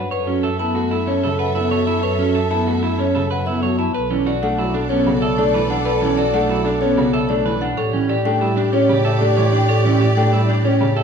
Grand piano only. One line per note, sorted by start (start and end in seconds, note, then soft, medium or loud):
0.27 0.48 F#3 medium
0.59 0.80 B3 medium
0.75 0.96 A3 medium
1.24 1.44 C#3 medium
1.56 1.76 B3 medium
1.72 1.92 F#3 medium
2.20 2.40 F#3 medium
2.51 2.72 B3 medium
2.67 2.88 A3 medium
3.15 3.36 C#3 medium
3.47 3.67 B3 medium
3.63 3.84 F#3 medium
4.11 4.31 E3 medium
4.43 4.63 A3 loud
4.59 4.79 F#3 medium
4.90 5.11 B3 medium
5.07 5.27 C#3 medium
5.38 5.59 A3 loud
5.54 5.75 E3 medium
6.01 6.22 E3 medium
6.34 6.55 A3 loud
6.49 6.70 F#3 medium
6.81 7.02 B3 loud
6.98 7.18 C#3 medium
7.30 7.50 A3 loud
7.45 7.66 E3 medium
7.93 8.14 E3 medium
8.25 8.46 A3 loud
8.41 8.62 G3 medium
8.73 8.94 C#4 loud
8.89 9.10 C#3 medium
9.21 9.42 A3 medium
9.37 9.58 E3 medium
9.85 10.06 E3 medium
10.17 10.38 A3 medium
10.33 10.54 G3 medium
10.65 10.85 C#4 medium
10.81 11.01 C#3 medium